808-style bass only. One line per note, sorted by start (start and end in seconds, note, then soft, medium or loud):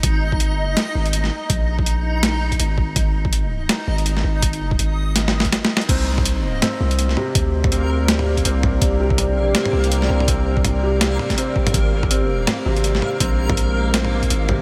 0.03 0.54 G#1 medium
0.54 0.75 G1 medium
0.95 1.30 G#1 loud
1.50 2.58 A#1 loud
2.59 2.95 G#1 loud
2.96 3.68 G#1 medium
3.87 4.23 G#1 loud
4.24 4.78 G#1 medium
4.79 5.52 G#1 medium
5.89 6.61 C2 medium
6.80 7.16 C2 loud
7.35 8.44 D2 medium
8.45 8.80 C2 loud
8.82 9.33 C2 medium
9.33 9.54 B1 medium
9.73 10.08 C2 medium
10.10 11.18 C2 loud
11.74 12.46 G#1 medium
12.66 13.01 G#1 medium
13.20 14.29 A#1 medium
14.30 14.62 G#1 loud